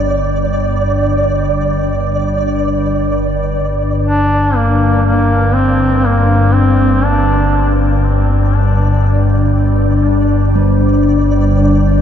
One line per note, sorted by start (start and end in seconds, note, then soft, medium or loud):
0.00 4.05 G1 medium
0.00 4.06 G2 medium
0.00 4.06 D5 medium
4.07 12.02 G1 medium
4.07 12.02 G2 medium
4.07 4.57 D4 loud
4.07 12.02 D5 medium
4.56 5.05 A#3 medium
5.05 5.56 A#3 medium
5.54 6.07 C4 medium
6.05 6.55 A#3 medium
6.53 7.06 C4 medium
7.04 7.80 D4 medium
10.55 12.02 G3 medium